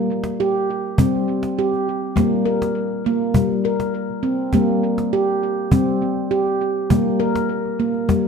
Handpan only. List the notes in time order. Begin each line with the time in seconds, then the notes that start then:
Already playing: G3 A#3
0.40 G4
0.98 G3 C4
1.59 G4
2.16 G3 A#3
2.46 A#4
3.06 A#3
3.35 G3
3.65 A#4
4.23 C4
4.54 G3 A#3
5.13 G4
5.72 G3 C4
6.31 G4
6.90 G3 A#3
7.20 A#4
7.80 A#3
8.09 G3